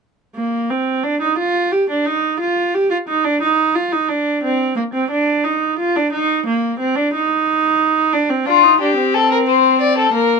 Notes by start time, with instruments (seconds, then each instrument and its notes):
0.36 viola A#3
0.70 viola C4
1.03 viola D4
1.21 viola D#4
1.38 viola F4
1.72 viola G4
1.89 viola D4
2.06 viola D#4
2.40 viola F4
2.74 viola G4
2.91 viola F4
3.08 viola D#4
3.24 viola D4
3.42 viola D#4
3.75 viola F4
3.92 viola D#4
4.09 viola D4
4.43 viola C4
4.76 viola A#3
4.94 viola C4
5.11 viola D4
5.44 viola D#4
5.79 viola F4
5.96 viola D4
6.12 viola D#4
6.46 viola A#3
6.79 viola C4
6.96 viola D4
7.13 viola D#4
8.13 viola D4
8.30 viola C4
8.46 viola D4, violin F4
8.63 viola D#4
8.80 viola D4, violin G4
8.97 viola C4
9.14 violin A4
9.31 violin A#4
9.47 violin C5
9.81 violin D5
9.98 violin A4
10.13 viola A#3, violin A#4